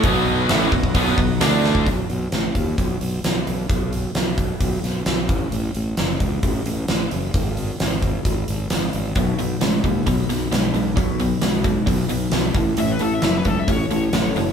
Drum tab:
HH |o---o---o---o---|o-o-o-o-o-o-o-o-|o-o-o-o-o-o-o-o-|o-o-o-o-o-o-o-o-|
SD |----o-------o-o-|----o-------o---|----o-----o-o---|----o-------o---|
BD |o-----ooo-o----o|o-----o-o-------|o-----o-o-----o-|------o-o-------|

HH |o-o-o-o-o-o-o-o-|o-o-o-o-o-o-o-o-|o-o-o-o-o-o-o-o-|o-o-o-o-o-o-o-o-|
SD |----o-------o---|----o-----o-o---|----o-------o---|----o-------o---|
BD |o-----o-o-------|o-----o-o-------|o-----o-o-----o-|------o-o-------|